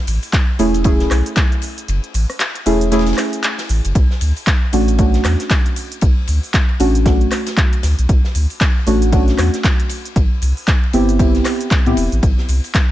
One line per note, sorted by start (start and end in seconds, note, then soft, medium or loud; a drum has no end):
0.00 0.56 A3 medium
0.00 0.56 C#4 medium
0.00 0.57 E4 medium
0.00 0.57 G#4 loud
0.07 0.18 A1 medium
0.07 open hi-hat loud
0.07 ride medium
0.07 shaker medium
0.23 open hi-hat medium
0.23 ride soft
0.23 shaker soft
0.33 kick loud
0.33 snare loud
0.33 clap loud
0.33 closed hi-hat medium
0.33 ride medium
0.33 shaker soft
0.59 1.06 E1 loud
0.59 0.82 A3 medium
0.59 0.82 C#4 medium
0.59 0.82 E4 medium
0.59 0.83 G#4 medium
0.59 open hi-hat loud
0.59 ride medium
0.59 shaker medium
0.74 closed hi-hat medium
0.74 ride soft
0.74 shaker soft
0.84 2.63 A3 medium
0.84 2.63 C#4 medium
0.84 2.64 E4 medium
0.84 2.64 G#4 loud
0.84 kick loud
0.84 closed hi-hat medium
0.84 ride loud
0.84 shaker soft
1.00 snare medium
1.00 closed hi-hat soft
1.11 1.22 B1 loud
1.11 cross-stick medium
1.11 clap medium
1.11 open hi-hat loud
1.11 shaker medium
1.26 closed hi-hat medium
1.26 shaker soft
1.36 kick loud
1.36 snare loud
1.36 clap loud
1.36 closed hi-hat medium
1.36 ride medium
1.36 shaker soft
1.52 closed hi-hat soft
1.62 open hi-hat loud
1.62 ride medium
1.62 shaker medium
1.78 closed hi-hat medium
1.78 shaker soft
1.88 1.99 F#1 loud
1.88 closed hi-hat medium
1.88 ride medium
1.88 shaker soft
2.04 closed hi-hat soft
2.14 2.25 A1 medium
2.14 open hi-hat loud
2.14 ride medium
2.14 shaker medium
2.30 cross-stick medium
2.30 open hi-hat medium
2.30 shaker soft
2.39 snare loud
2.39 clap loud
2.39 closed hi-hat medium
2.39 ride loud
2.39 shaker soft
2.55 closed hi-hat soft
2.55 ride soft
2.66 3.13 E1 loud
2.66 2.89 A3 medium
2.66 2.89 C#4 medium
2.66 2.89 E4 medium
2.66 2.89 G#4 medium
2.66 open hi-hat loud
2.66 ride medium
2.66 shaker medium
2.81 closed hi-hat medium
2.81 shaker soft
2.91 3.94 A3 medium
2.91 3.94 C#4 medium
2.91 3.94 E4 medium
2.91 3.94 G#4 loud
2.91 snare loud
2.91 closed hi-hat medium
2.91 ride medium
2.91 shaker soft
2.99 snare medium
2.99 ride medium
3.06 snare medium
3.06 closed hi-hat soft
3.06 ride medium
3.13 snare medium
3.13 ride medium
3.18 cross-stick medium
3.18 snare loud
3.18 clap medium
3.18 open hi-hat loud
3.18 ride medium
3.18 shaker medium
3.33 closed hi-hat medium
3.33 shaker soft
3.43 clap loud
3.43 closed hi-hat medium
3.43 ride medium
3.43 shaker soft
3.58 snare loud
3.58 closed hi-hat soft
3.58 ride medium
3.69 3.80 A1 medium
3.69 open hi-hat loud
3.69 shaker medium
3.85 3.92 F#1 medium
3.85 closed hi-hat medium
3.85 ride medium
3.85 shaker soft
3.95 4.06 B1 loud
3.95 kick loud
3.95 closed hi-hat medium
3.95 ride medium
3.95 shaker soft
4.11 snare medium
4.21 4.32 D2 medium
4.21 open hi-hat loud
4.21 ride medium
4.21 shaker medium
4.37 open hi-hat medium
4.37 ride soft
4.37 shaker soft
4.47 kick loud
4.47 snare loud
4.47 clap loud
4.47 closed hi-hat medium
4.47 ride medium
4.47 shaker soft
4.73 5.20 A1 loud
4.73 4.96 A3 medium
4.73 4.96 C#4 medium
4.73 4.96 D4 medium
4.73 4.96 F#4 medium
4.73 open hi-hat loud
4.73 ride medium
4.73 shaker medium
4.88 closed hi-hat medium
4.88 ride soft
4.88 shaker soft
4.98 6.77 A3 loud
4.98 6.77 C#4 medium
4.98 6.77 D4 medium
4.98 6.78 F#4 loud
4.98 kick loud
4.98 closed hi-hat medium
4.98 ride medium
4.98 shaker soft
5.14 snare medium
5.14 closed hi-hat soft
5.24 5.36 E2 loud
5.24 cross-stick medium
5.24 clap medium
5.24 open hi-hat loud
5.24 ride medium
5.24 shaker medium
5.40 snare medium
5.40 closed hi-hat medium
5.40 shaker soft
5.50 kick loud
5.50 snare loud
5.50 clap loud
5.50 closed hi-hat medium
5.50 ride medium
5.50 shaker soft
5.66 closed hi-hat soft
5.76 open hi-hat loud
5.76 ride medium
5.76 shaker medium
5.92 closed hi-hat medium
5.92 shaker soft
6.01 6.13 B1 medium
6.01 kick loud
6.01 closed hi-hat medium
6.01 ride loud
6.01 shaker soft
6.27 6.39 D2 medium
6.27 open hi-hat loud
6.27 ride medium
6.27 shaker medium
6.43 open hi-hat medium
6.43 shaker soft
6.53 kick loud
6.53 snare loud
6.53 clap loud
6.53 closed hi-hat medium
6.53 ride loud
6.53 shaker soft
6.69 ride soft
6.80 7.27 A1 loud
6.80 7.03 A3 medium
6.80 7.03 C#4 medium
6.80 7.03 D4 medium
6.80 7.03 F#4 medium
6.80 open hi-hat loud
6.80 ride medium
6.80 shaker medium
6.95 closed hi-hat medium
6.95 shaker soft
7.05 8.84 A3 loud
7.05 8.84 C#4 medium
7.05 8.84 D4 medium
7.05 8.84 F#4 loud
7.05 kick loud
7.05 snare loud
7.05 closed hi-hat medium
7.05 ride medium
7.05 shaker soft
7.21 closed hi-hat soft
7.21 ride soft
7.31 cross-stick medium
7.31 clap medium
7.31 open hi-hat loud
7.31 ride medium
7.31 shaker medium
7.46 snare loud
7.46 closed hi-hat medium
7.46 ride medium
7.46 shaker soft
7.57 kick loud
7.57 clap loud
7.57 closed hi-hat medium
7.57 ride soft
7.57 shaker soft
7.73 closed hi-hat soft
7.73 ride medium
7.83 7.94 D2 loud
7.83 snare loud
7.83 open hi-hat loud
7.83 ride medium
7.83 shaker medium
7.98 8.06 B1 medium
7.98 closed hi-hat medium
7.98 ride soft
7.98 shaker soft
8.09 8.20 B1 loud
8.09 kick loud
8.09 closed hi-hat medium
8.09 ride medium
8.09 shaker soft
8.24 snare medium
8.35 8.46 D2 medium
8.35 open hi-hat loud
8.35 ride medium
8.35 shaker medium
8.50 open hi-hat medium
8.50 ride soft
8.50 shaker soft
8.61 kick loud
8.61 snare loud
8.61 clap loud
8.61 closed hi-hat medium
8.61 ride loud
8.61 shaker soft
8.87 9.34 A1 loud
8.87 9.10 A3 medium
8.87 9.10 C#4 medium
8.87 9.10 D4 medium
8.87 9.10 F#4 medium
8.87 open hi-hat loud
8.87 ride medium
8.87 shaker medium
9.02 closed hi-hat medium
9.02 ride soft
9.02 shaker soft
9.12 9.89 A3 loud
9.12 9.89 C#4 medium
9.12 9.89 D4 medium
9.12 9.89 F#4 loud
9.12 kick loud
9.12 closed hi-hat medium
9.12 ride loud
9.12 shaker soft
9.28 snare medium
9.28 closed hi-hat soft
9.38 9.49 E2 loud
9.38 cross-stick medium
9.38 clap medium
9.38 open hi-hat loud
9.38 ride medium
9.38 shaker medium
9.54 snare soft
9.54 closed hi-hat medium
9.54 shaker soft
9.64 kick loud
9.64 snare loud
9.64 clap loud
9.64 closed hi-hat medium
9.64 ride medium
9.64 shaker soft
9.80 closed hi-hat soft
9.89 open hi-hat loud
9.89 ride medium
9.89 shaker medium
10.05 closed hi-hat soft
10.05 shaker soft
10.16 10.27 A1 loud
10.16 kick loud
10.16 closed hi-hat medium
10.16 ride medium
10.16 shaker soft
10.42 10.53 C2 medium
10.42 open hi-hat loud
10.42 ride medium
10.42 shaker medium
10.57 open hi-hat medium
10.57 shaker soft
10.67 kick loud
10.67 snare loud
10.67 clap loud
10.67 closed hi-hat medium
10.67 ride medium
10.67 shaker soft
10.84 ride soft
10.93 11.41 G1 loud
10.93 11.17 B3 medium
10.93 11.17 C4 medium
10.93 11.17 E4 medium
10.93 11.17 G4 medium
10.93 open hi-hat loud
10.93 ride medium
10.93 shaker medium
11.09 closed hi-hat medium
11.09 shaker soft
11.19 11.83 B3 medium
11.19 11.83 C4 medium
11.19 11.84 E4 medium
11.19 11.84 G4 loud
11.19 kick loud
11.19 closed hi-hat medium
11.19 ride loud
11.19 shaker soft
11.34 snare soft
11.34 closed hi-hat soft
11.45 cross-stick medium
11.45 clap medium
11.45 open hi-hat loud
11.45 ride medium
11.45 shaker medium
11.61 closed hi-hat medium
11.61 shaker soft
11.71 kick loud
11.71 snare loud
11.71 clap loud
11.71 closed hi-hat medium
11.71 ride medium
11.71 shaker soft
11.86 11.94 A2 medium
11.86 11.95 B3 medium
11.86 11.95 C4 medium
11.86 11.95 E4 medium
11.86 11.95 G4 medium
11.86 closed hi-hat soft
11.86 ride soft
11.97 12.08 E1 loud
11.97 open hi-hat loud
11.97 ride medium
11.97 shaker medium
12.12 12.20 A1 loud
12.12 closed hi-hat soft
12.12 shaker soft
12.23 12.34 A1 loud
12.23 kick loud
12.23 closed hi-hat medium
12.23 ride medium
12.23 shaker soft
12.38 snare medium
12.49 12.60 C2 medium
12.49 open hi-hat loud
12.49 ride medium
12.49 shaker medium
12.64 open hi-hat medium
12.64 ride soft
12.64 shaker soft
12.74 kick loud
12.74 snare loud
12.74 clap loud
12.74 closed hi-hat medium
12.74 ride medium
12.74 shaker soft